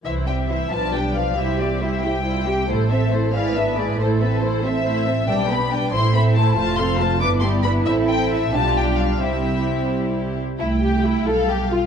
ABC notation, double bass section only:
X:1
M:6/8
L:1/8
Q:3/8=91
K:C
V:1 name="Double bass section" clef=bass
C,,3 B,,,3 | C,,6 | A,,,3 ^G,,,3 | A,,,6 |
B,,,3 A,,,3 | F,,,3 G,,,3 | A,,,3 B,,,3 | C,,4- C,, z |
C,,3 B,,,3 |]